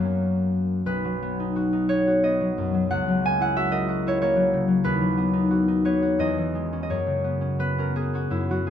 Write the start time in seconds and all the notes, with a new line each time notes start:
Already playing: F#2 F#3 B5 C#6
0.00 A#3
0.05 C#4
0.86 B1 B4
1.05 F#3
1.22 B3
1.40 D#4
1.56 F#4
1.73 D#4
1.89 B3 C#5
2.07 F#4
2.23 B3 D#5
2.41 F#3
2.58 F#2
2.74 F#3
2.91 C#2 F#5
3.08 F#3
3.25 A#3 G#5
3.40 E4 F#5
3.56 F#4 E5
3.72 A#4 D#5
3.89 F#4
4.07 E4 C#5
4.22 A#3 C#5
4.36 F#3
4.53 C#3
4.68 F#3
4.84 D#2 B4
5.01 F#3
5.18 B3
5.33 D#4
5.51 F#4
5.68 D#4
5.85 B3 C#5
6.02 F#4
6.19 E2 D#5
6.38 E3
6.55 G#3
6.73 C#4
6.83 D#5
6.90 F#2 C#5
7.07 C#3
7.24 B3
7.41 C#4
7.59 B3 B4
7.78 C#4 A#4
7.96 B3 G#4
8.13 C#4 F#4
8.30 F#2 E4
8.49 F#3 F#4
8.66 A#3 G#4